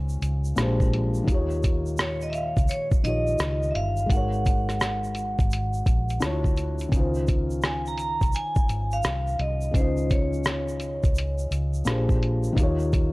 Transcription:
Already playing: C#2 C#3 G#3 C#4 D#4 F4
0.09 shaker
0.22 C#2, closed hi-hat, shaker
0.45 shaker
0.56 A#1 A#2 F3 G#3 D4, cross-stick, closed hi-hat, shaker
0.60 G4 C5
0.80 kick, shaker
0.93 closed hi-hat
1.14 shaker
1.24 D#3 D#4, kick
1.28 D#2 F4 G4, closed hi-hat, shaker
1.34 C#5
1.50 shaker
1.63 kick, closed hi-hat, shaker
1.86 shaker
1.97 C#5, cross-stick, closed hi-hat, shaker
2.21 D#5, shaker
2.30 E5, closed hi-hat
2.34 F5, shaker
2.57 C#2, kick, closed hi-hat, shaker
2.68 C#5, closed hi-hat, shaker
2.92 kick, shaker
3.03 A#1 D#3 D#4 F4 G4 D#5, closed hi-hat, shaker
3.08 C#5
3.27 shaker
3.39 C#2, cross-stick, closed hi-hat, shaker
3.63 shaker
3.71 E5
3.75 G1 F5, closed hi-hat
3.97 shaker
4.06 G#1 G#3 D#4, kick
4.10 F#4 A#4 F#5, closed hi-hat, shaker
4.17 C#5
4.33 shaker
4.46 kick, closed hi-hat, shaker
4.69 cross-stick, closed hi-hat, shaker
4.81 cross-stick, closed hi-hat, shaker
5.04 shaker
5.15 closed hi-hat, shaker
5.39 G#1, kick, closed hi-hat, shaker
5.51 closed hi-hat, shaker
5.74 shaker
5.86 A#1, kick, closed hi-hat, shaker
6.09 closed hi-hat, shaker
6.20 D2 D3 D4 E4 F4, cross-stick, closed hi-hat, shaker
6.25 C#5
6.31 F#4
6.44 kick, shaker
6.57 closed hi-hat, shaker
6.79 closed hi-hat, shaker
6.89 C#2 D#3 C#4, kick, closed hi-hat
6.93 D#4 F4, shaker
6.99 C5
7.14 shaker
7.27 kick, closed hi-hat, shaker
7.51 shaker
7.62 G#5, cross-stick, closed hi-hat, shaker
7.86 A#5, shaker
7.98 A#5, closed hi-hat, shaker
8.21 C2, kick, closed hi-hat, shaker
8.33 G#5, closed hi-hat, shaker
8.56 kick, shaker
8.69 G#1, closed hi-hat, shaker
8.91 F5, shaker
9.03 C2, cross-stick, closed hi-hat, shaker
9.27 shaker
9.39 C2 D#5, closed hi-hat
9.61 shaker
9.71 C#2 C#3 C#4, kick, closed hi-hat
9.75 D#4 F4 C5, shaker
9.81 D#5
9.97 shaker
10.10 C#5, kick, closed hi-hat, shaker
10.33 shaker
10.44 cross-stick, closed hi-hat, shaker
10.68 shaker
10.80 closed hi-hat, shaker
11.03 C#2, kick, closed hi-hat, shaker
11.15 closed hi-hat, shaker
11.38 shaker
11.51 C#2, closed hi-hat, shaker
11.74 shaker
11.85 A#1 A#2 F3 D4 G4, cross-stick, closed hi-hat, shaker
11.89 G#4 C5
12.09 kick, shaker
12.23 closed hi-hat
12.44 shaker
12.53 D#3 D#4, kick
12.57 D#2 F4 G4, closed hi-hat, shaker
12.63 C#5
12.79 shaker
12.93 kick, closed hi-hat, shaker

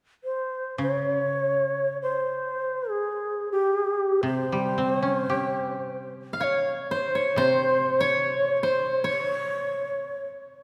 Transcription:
0.24 C5
0.78 C#3 C#5
2.02 C5
2.90 G#4
3.52 G4
4.23 C3 C5
4.52 G3
4.78 C4
4.99 C#4 C#5
5.14 C5
5.30 G4
5.39 C#5
5.54 C5
6.33 F5
6.40 C#5 F5
6.91 C5
7.15 C#5
7.36 C3 C5
8.00 C#5
8.57 C#5
8.63 C5
9.04 C#5

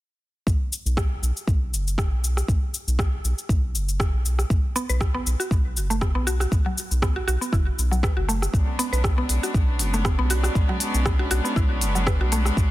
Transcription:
0.47 B1, kick, shaker
0.73 shaker
0.86 B1, shaker
0.97 kick, cross-stick, shaker
1.22 B1, shaker
1.37 shaker
1.47 B1, kick, shaker
1.73 F#1, shaker
1.88 shaker
1.98 kick, cross-stick, shaker
2.11 B1
2.24 shaker
2.37 cross-stick, shaker
2.48 B1, kick, shaker
2.74 shaker
2.87 B1, shaker
2.99 kick, cross-stick, shaker
3.24 B1, shaker
3.38 shaker
3.49 B1, kick, shaker
3.74 F#1, shaker
3.89 shaker
4.00 kick, cross-stick, shaker
4.13 B1
4.26 shaker
4.39 cross-stick, shaker
4.50 B1, kick, shaker
4.76 B3, shaker
4.89 B1 B4, shaker
5.01 kick, cross-stick, shaker
5.14 B3
5.26 B1, shaker
5.40 F#4, shaker
5.51 B1, kick, shaker
5.76 F#1, shaker
5.90 A3, shaker
6.01 B3, kick, cross-stick, shaker
6.15 B1 B3
6.27 F#4, shaker
6.40 F#4, cross-stick, shaker
6.52 B1, kick, shaker
6.66 F#3
6.78 shaker
6.91 B1, shaker
7.02 B3, kick, cross-stick, shaker
7.16 F#4
7.28 B1 F#4, shaker
7.41 B3, shaker
7.53 F#1 E4, kick, shaker
7.78 B1, shaker
7.91 F#3, shaker
8.03 B4, kick, cross-stick, shaker
8.17 F#1 F#4
8.29 A3, shaker
8.42 cross-stick, shaker
8.53 B1 G#3 B3 C#4 D4, kick, shaker
8.79 B3, open hi-hat, shaker
8.92 B1 B4, shaker
9.04 kick, cross-stick, shaker
9.18 B3
9.29 B1, open hi-hat, shaker
9.43 F#4, shaker
9.54 B1, kick, shaker
9.79 F#1, open hi-hat, shaker
9.94 A3, shaker
10.05 B3, kick, cross-stick, shaker
10.18 B1 B3
10.30 F#4, open hi-hat, shaker
10.44 F#4, cross-stick, shaker
10.55 B1, kick, shaker
10.69 F#3
10.80 open hi-hat, shaker
10.94 B1, shaker
11.06 B3, kick, cross-stick, shaker
11.19 F#4
11.31 B1 F#4, open hi-hat, shaker
11.45 B3, shaker
11.56 B1 E4, kick, shaker
11.81 F#1, open hi-hat, shaker
11.95 F#3, shaker
12.07 B4, kick, cross-stick, shaker
12.20 B1 F#4
12.32 A3, open hi-hat, shaker
12.45 cross-stick, shaker
12.57 B1, kick, shaker

